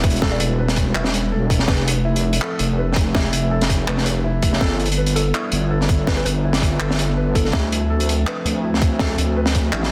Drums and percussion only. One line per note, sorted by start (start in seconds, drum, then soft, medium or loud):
0.04 kick loud
0.04 closed hi-hat medium
0.10 closed hi-hat medium
0.16 closed hi-hat soft
0.22 kick loud
0.22 snare medium
0.40 closed hi-hat loud
0.68 snare medium
0.68 closed hi-hat medium
0.76 kick medium
0.76 closed hi-hat medium
0.95 clap loud
1.05 snare medium
1.14 closed hi-hat medium
1.50 kick medium
1.50 closed hi-hat medium
1.59 snare soft
1.68 kick loud
1.68 snare medium
1.88 closed hi-hat loud
2.16 closed hi-hat medium
2.33 closed hi-hat medium
2.42 clap loud
2.59 closed hi-hat medium
2.93 kick loud
2.93 snare soft
2.97 closed hi-hat medium
3.15 kick loud
3.15 snare medium
3.33 closed hi-hat medium
3.61 snare medium
3.61 closed hi-hat medium
3.70 kick medium
3.70 closed hi-hat medium
3.88 clap loud
3.97 snare soft
4.06 closed hi-hat medium
4.42 kick medium
4.42 closed hi-hat medium
4.53 snare soft
4.61 kick loud
4.61 snare medium
4.79 closed hi-hat soft
4.85 closed hi-hat medium
4.92 closed hi-hat medium
5.06 closed hi-hat medium
5.16 closed hi-hat medium
5.35 clap loud
5.52 closed hi-hat medium
5.81 snare soft
5.89 kick loud
5.89 closed hi-hat medium
6.07 kick loud
6.07 snare medium
6.26 closed hi-hat medium
6.53 snare medium
6.53 closed hi-hat medium
6.62 kick medium
6.62 closed hi-hat medium
6.80 clap loud
6.91 snare medium
6.99 closed hi-hat medium
7.35 kick medium
7.35 closed hi-hat medium
7.45 snare soft
7.47 snare soft
7.51 snare soft
7.53 kick loud
7.53 snare medium
7.57 snare soft
7.60 snare soft
7.72 closed hi-hat medium
8.00 closed hi-hat medium
8.09 closed hi-hat medium
8.27 clap loud
8.46 closed hi-hat medium
8.74 snare soft
8.82 kick loud
8.82 closed hi-hat medium
8.99 kick loud
8.99 snare medium
9.18 closed hi-hat medium
9.46 snare medium
9.46 closed hi-hat medium
9.55 kick medium
9.55 closed hi-hat medium
9.73 clap loud
9.83 snare soft